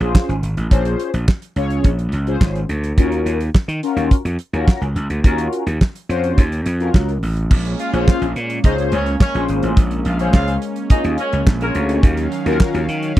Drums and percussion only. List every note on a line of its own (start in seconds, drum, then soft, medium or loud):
0.01 closed hi-hat soft
0.15 kick loud
0.15 snare loud
0.15 clap loud
0.29 closed hi-hat soft
0.43 closed hi-hat medium
0.57 closed hi-hat soft
0.71 kick loud
0.71 closed hi-hat medium
0.85 closed hi-hat medium
1.00 closed hi-hat medium
1.14 closed hi-hat medium
1.28 kick loud
1.28 snare loud
1.28 clap medium
1.42 closed hi-hat medium
1.56 closed hi-hat medium
1.70 closed hi-hat soft
1.84 kick loud
1.84 closed hi-hat medium
1.99 closed hi-hat medium
2.12 closed hi-hat medium
2.27 closed hi-hat soft
2.41 kick loud
2.41 snare loud
2.41 clap loud
2.55 closed hi-hat soft
2.69 closed hi-hat medium
2.84 closed hi-hat medium
2.98 kick loud
2.98 closed hi-hat medium
3.12 closed hi-hat medium
3.26 closed hi-hat medium
3.41 closed hi-hat soft
3.55 kick loud
3.55 snare loud
3.55 clap medium
3.69 closed hi-hat medium
3.83 closed hi-hat medium
3.97 closed hi-hat soft
4.11 kick loud
4.11 closed hi-hat medium
4.25 closed hi-hat medium
4.39 closed hi-hat medium
4.54 closed hi-hat soft
4.68 kick loud
4.68 snare loud
4.68 clap medium
4.82 closed hi-hat soft
4.96 closed hi-hat medium
5.10 closed hi-hat medium
5.24 kick loud
5.24 closed hi-hat medium
5.38 closed hi-hat medium
5.53 closed hi-hat medium
5.67 closed hi-hat medium
5.81 kick loud
5.81 snare loud
5.81 clap medium
5.95 closed hi-hat medium
6.10 closed hi-hat medium
6.24 closed hi-hat soft
6.38 kick loud
6.38 closed hi-hat medium
6.52 closed hi-hat medium
6.66 closed hi-hat medium
6.80 closed hi-hat soft
6.94 kick loud
6.94 snare loud
6.94 clap medium
7.09 closed hi-hat soft
7.23 open hi-hat medium
7.37 closed hi-hat medium
7.51 kick loud
7.51 crash loud
7.65 closed hi-hat medium
7.79 closed hi-hat medium
7.94 closed hi-hat medium
8.08 kick loud
8.08 snare loud
8.08 clap medium
8.22 closed hi-hat medium
8.36 closed hi-hat medium
8.50 closed hi-hat medium
8.64 kick loud
8.64 closed hi-hat loud
8.78 closed hi-hat medium
8.92 closed hi-hat medium
9.06 closed hi-hat soft
9.20 kick loud
9.20 snare loud
9.20 clap loud
9.35 closed hi-hat soft
9.49 closed hi-hat medium
9.63 closed hi-hat medium
9.77 kick loud
9.77 closed hi-hat loud
9.91 closed hi-hat medium
10.05 closed hi-hat medium
10.19 closed hi-hat medium
10.34 kick loud
10.34 snare loud
10.34 clap medium
10.48 closed hi-hat medium
10.62 closed hi-hat medium
10.76 closed hi-hat medium
10.90 kick loud
10.90 closed hi-hat loud
11.04 closed hi-hat medium
11.18 closed hi-hat medium
11.33 closed hi-hat soft
11.47 kick loud
11.47 snare loud
11.47 clap loud
11.61 closed hi-hat soft
11.75 closed hi-hat medium
11.89 closed hi-hat medium
12.03 kick loud
12.03 closed hi-hat medium
12.17 closed hi-hat medium
12.32 closed hi-hat medium
12.46 closed hi-hat medium
12.60 kick loud
12.60 snare loud
12.60 clap loud
12.74 closed hi-hat medium
12.89 closed hi-hat medium
13.03 closed hi-hat medium